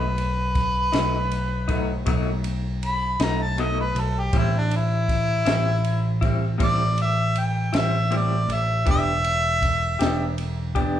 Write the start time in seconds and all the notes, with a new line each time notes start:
Already playing: B1 B4
0.18 ride
0.55 kick, snare, ride
0.92 B1 F#3 A3 D#4, snare, ride
1.31 ride
1.68 F#3 A3 D#4, kick, ride
2.06 B1 B2 F#3 A3 D#4, kick, ride
2.44 ride
2.83 B5, ride
3.20 B1 F#3 A3 D#4 A#5, snare, ride
3.42 A5
3.58 B2 F#3 A3 D#4 D#5, ride
3.81 B4
3.95 B1, ride
4.00 A4
4.20 G4
4.33 A1 A2 G3 C4 E4, kick, ride
4.38 E4
4.58 D4
4.71 ride
4.76 E4
5.09 kick, snare, ride
5.45 A1 G3 C4 E4, snare, ride
5.84 ride
6.21 G3 C4 E4, kick, ride
6.58 A1 A2 G3 C4 E4, kick, ride
6.64 D5
6.98 ride
7.02 E5
7.35 G5, ride
7.73 A1 G3 C4 E4, snare, ride
7.78 E5
8.11 A2 G3 C4 E4, ride
8.17 D5
8.49 A1, ride
8.53 E5
8.86 E1 E3 B3 D4 G4, kick, ride
8.91 E5
9.24 ride
9.62 kick, snare, ride
9.99 E1 B3 D4 G4, snare, ride
10.38 ride
10.75 B3 D4 G4, kick, ride